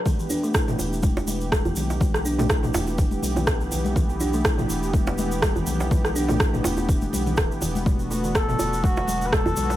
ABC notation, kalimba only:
X:1
M:4/4
L:1/16
Q:"Swing 16ths" 1/4=123
K:Em
V:1 name="Kalimba" clef=bass
E, E, D A, E E, z3 B,, B,, z2 E, z2 | E, E, D A, E E, z3 B,, B,, z2 E, z2 | E, E, D A, E E, z3 B,, B,, z2 E, z2 | E, E, D A, z E, z3 B,, B,, z2 E, z2 |
B,, B,, A, E, B, B,, z3 F, F, z2 B,, z2 |]